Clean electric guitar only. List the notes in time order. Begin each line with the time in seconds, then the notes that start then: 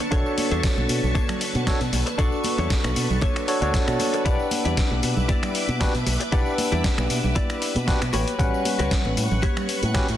0.00 muted clean electric guitar stroke
0.11 D4 A4 C#5
0.51 D4 A4 C#5
0.77 muted clean electric guitar stroke
1.15 D4 A4 C#5
1.92 muted clean electric guitar stroke
2.06 muted clean electric guitar stroke
2.18 D4 A4 D5
2.58 D4 A4 C#5
2.84 muted clean electric guitar stroke
3.22 D4 A4 C#5
3.99 muted clean electric guitar stroke
4.13 muted clean electric guitar stroke
4.25 E4 G4 D5
4.65 E4 G4 D5
4.91 muted clean electric guitar stroke
5.28 E4 G4 D5
6.06 muted clean electric guitar stroke
6.20 muted clean electric guitar stroke
6.32 E4 G4 D5
6.72 E4 G4 D5
6.98 muted clean electric guitar stroke
7.35 E4 G4 D5
8.13 F#4 G4 B4 C#5
8.79 F#4 G4 B4 C#5
9.05 muted clean electric guitar stroke
9.42 F#4 G4 B4 C#5